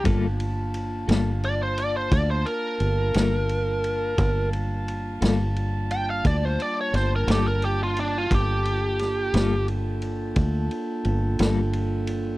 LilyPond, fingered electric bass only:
\new Staff \with { instrumentName = "Fingered electric bass" } { \clef bass \time 12/8 \key g \minor \tempo 4. = 58 g,,4. g,,4. d,8 r8 g,,8 g,,4. | g,,4. g,,4. d,8 r8 g,,8 g,,4. | g,,4. g,,4. d,8 r8 g,,8 g,,4. | }